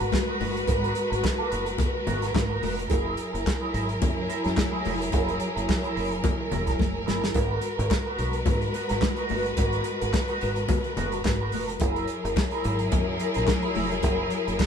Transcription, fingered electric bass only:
0.01 0.11 G#1 medium
0.41 0.63 G1 medium
0.69 0.91 G#1 loud
1.12 1.22 G#1 medium
1.52 1.75 F#1 medium
2.08 2.30 G#1 medium
2.35 2.58 G#1 medium
2.63 2.86 F1 loud
2.91 3.13 F#1 loud
3.34 3.44 F#1 medium
3.74 3.97 G#1 medium
4.02 4.25 F#2 loud
4.46 4.55 F#2 loud
4.86 5.08 F1 loud
5.13 5.36 F#1 loud
5.57 5.66 F#1 medium
5.97 6.19 F#1 medium
6.53 6.75 E1 medium
6.80 7.02 F#1 medium
7.08 7.30 G1 medium
7.36 7.58 G#1 loud
7.79 7.89 G#1 loud
8.19 8.41 B1 medium
8.47 8.69 G#2 loud
8.91 9.00 G#1 medium
9.31 9.53 G1 medium
9.58 9.80 G#1 loud
10.02 10.12 G#1 medium
10.43 10.65 G#1 loud
10.98 11.20 F#1 medium
11.25 11.54 G#1 loud
11.54 11.76 F1 loud
11.81 12.03 F#1 loud
12.25 12.34 F#1 loud
12.65 12.87 G#1 loud
12.92 13.15 F#2 loud
13.36 13.46 A#1 medium
13.76 13.99 F1 medium
14.04 14.26 F#1 loud
14.48 14.58 F#1 medium

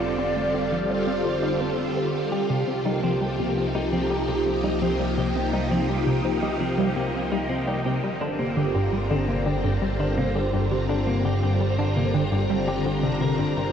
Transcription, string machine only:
0.00 2.32 D3 medium
0.00 2.32 G3 medium
0.00 3.28 C4 medium
0.00 3.43 F4 medium
0.00 4.61 A4 medium
2.32 8.03 C3 medium
2.63 8.03 F3 medium
2.79 10.32 A#3 medium
2.94 9.12 G4 medium
3.45 8.04 D#4 medium
8.04 13.72 D3 medium
8.14 13.72 C4 medium
8.24 13.72 F4 medium
8.36 13.72 G3 medium
8.73 13.72 A#5 medium

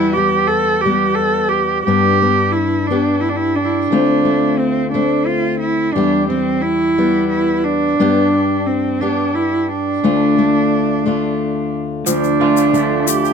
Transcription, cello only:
0.00 0.15 E4 medium
0.13 0.49 G4 medium
0.47 0.83 A4 medium
0.81 1.16 G4 medium
1.15 1.50 A4 medium
1.49 1.83 G4 medium
1.83 2.53 G4 medium
2.52 2.88 E4 medium
2.87 3.22 D4 medium
3.20 3.31 E4 medium
3.29 3.37 D4 medium
3.36 3.57 E4 medium
3.55 3.66 D4 medium
3.64 4.59 D4 medium
3.64 3.69 E4 medium
4.58 4.91 C4 medium
4.92 5.28 D4 medium
5.26 5.60 F4 medium
5.60 5.94 E4 medium
5.93 6.28 D4 medium
6.29 6.63 C4 medium
6.61 7.29 E4 medium
7.29 7.66 E4 medium
7.64 8.68 D4 medium
8.66 9.02 C4 medium
9.01 9.36 D4 medium
9.35 9.70 E4 medium
9.69 11.72 D4 medium
12.09 13.10 D4 medium
13.09 13.33 G4 medium

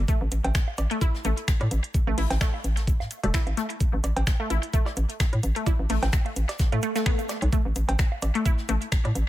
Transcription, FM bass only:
0.21 0.28 A1 loud
0.32 0.40 A1 medium
0.44 0.52 A1 medium
0.78 0.87 A1 medium
1.25 1.33 A1 medium
1.61 1.68 A2 loud
1.71 1.80 A1 loud
2.07 2.14 A1 loud
2.18 2.26 A1 medium
2.30 2.38 A1 loud
2.64 3.02 A1 medium
3.00 3.07 A2 loud
3.24 3.31 E1 loud
3.47 3.54 A1 medium
3.93 4.00 A1 loud
4.04 4.12 A1 medium
4.17 4.24 A1 medium
4.50 4.59 A1 medium
4.97 5.06 A1 medium
5.33 5.40 A2 loud
5.43 5.52 A1 loud
5.79 5.87 A1 loud
5.90 5.99 A1 medium
6.03 6.10 A1 loud
6.36 6.45 A1 medium
6.72 6.79 A2 medium
7.42 7.49 B1 loud
7.65 7.73 A1 loud
7.76 7.85 A1 medium
7.89 7.96 A1 medium
8.22 8.31 A1 medium
8.69 8.78 A1 medium
9.05 9.12 A2 loud
9.15 9.24 A1 loud

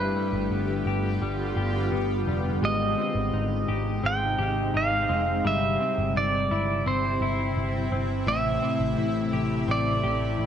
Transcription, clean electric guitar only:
0.00 2.63 G2 loud
0.00 0.87 G4 medium
0.16 1.21 G3 medium
0.52 1.91 B3 medium
0.87 1.56 G4 medium
1.22 2.27 G3 medium
1.57 3.68 G4 medium
1.92 2.69 B3 medium
2.27 2.98 G3 medium
2.63 5.44 G#3 medium
2.98 4.03 C4 medium
3.33 4.73 D#4 medium
3.68 4.38 G4 medium
4.03 5.09 C4 medium
4.38 6.51 G4 medium
4.74 5.52 D#4 medium
5.09 5.80 C4 medium
5.45 8.30 G3 medium
5.81 6.86 C4 medium
6.51 7.21 E4 medium
6.86 7.92 C4 medium
7.22 8.98 E4 medium
7.92 8.62 C4 medium
8.27 10.46 A2 loud
8.62 9.68 C4 medium
8.98 10.38 E4 medium
9.33 10.03 G4 medium
9.68 10.46 C4 medium
10.03 10.46 G4 medium
10.39 10.46 E4 medium

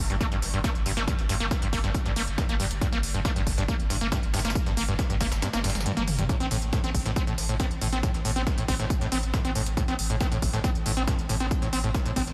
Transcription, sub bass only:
0.10 0.20 G1 medium
0.32 0.42 G1 medium
0.42 0.53 G1 loud
0.53 0.64 G1 medium
0.75 0.85 G1 medium
0.86 0.96 G1 loud
0.97 1.07 G1 medium
1.19 1.29 G1 medium
1.29 1.40 G1 loud
1.40 1.51 G1 medium
1.62 1.72 G1 medium
1.73 1.83 G1 loud
1.84 1.94 G1 medium
2.06 2.16 G1 medium
2.16 2.27 G1 loud
2.27 2.38 G1 medium
2.49 2.59 G1 medium
2.60 2.70 G1 loud
2.71 2.81 G1 medium
2.92 3.03 G1 medium
3.03 3.14 G1 loud
3.14 3.25 G1 medium
3.36 3.46 G1 medium
3.47 3.57 G1 loud
3.58 3.68 G1 medium
3.79 3.90 G1 medium
3.90 4.01 G1 loud
4.01 4.12 G1 medium
4.23 4.33 G1 medium
4.34 4.44 G1 loud
4.45 4.55 G1 medium
4.66 4.76 G1 medium
4.77 4.88 G1 loud
4.88 4.99 G1 medium
5.10 5.20 G1 medium
5.21 5.31 G1 loud
5.32 5.42 G1 medium
5.53 5.63 G1 medium
5.64 5.75 G1 loud
5.75 5.86 G1 medium
5.97 6.07 G1 medium
6.08 6.18 G1 loud
6.19 6.29 G1 medium
6.40 6.50 A1 medium
6.51 6.62 A1 loud
6.62 6.73 A1 medium
6.84 6.94 A1 medium
6.94 7.05 A1 loud
7.06 7.16 A1 medium
7.27 7.37 A1 medium
7.38 7.48 A1 loud
7.49 7.59 A1 medium
7.71 7.81 A1 medium
7.81 7.92 A1 loud
7.93 8.03 A1 medium
8.14 8.24 A1 medium
8.25 8.35 A1 loud
8.36 8.46 A1 medium
8.58 8.68 A1 medium
8.68 8.79 A1 loud
8.79 8.90 A1 medium
9.01 9.11 A1 medium
9.12 9.22 A1 loud
9.23 9.33 A1 medium
9.45 9.55 A1 medium
9.55 9.66 A1 loud
9.66 9.77 A1 medium
9.88 9.98 A1 medium
9.99 10.09 A1 loud
10.10 10.20 A1 medium
10.32 10.42 A1 medium
10.42 10.53 A1 loud
10.53 10.64 A1 medium
10.75 10.85 A1 medium
10.86 10.96 A1 loud
10.97 11.07 A1 medium
11.19 11.29 A1 medium
11.29 11.40 A1 loud
11.40 11.51 A1 medium
11.62 11.72 A1 medium
11.73 11.83 A1 loud
11.84 11.94 A1 medium
12.06 12.16 A1 medium
12.16 12.27 A1 loud
12.27 12.33 A1 medium

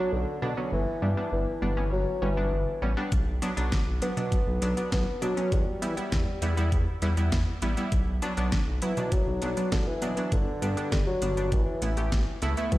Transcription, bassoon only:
0.00 0.14 F#3 loud
0.12 0.42 D3 medium
0.42 0.70 D3 medium
0.72 1.28 E3 loud
1.33 1.88 E3 medium
1.92 2.24 F#3 loud
2.22 2.82 E3 medium
4.02 4.88 B3 loud
4.92 5.24 B3 loud
5.22 5.54 F#3 medium
5.52 7.32 G3 loud
8.82 9.14 E3 medium
9.12 9.72 F#3 loud
9.72 9.89 D3 medium
9.87 10.34 E3 loud
10.32 10.94 D3 loud
10.92 11.06 G3 loud
11.07 11.49 F#3 loud
11.52 12.38 E3 medium
12.72 12.78 E3 medium

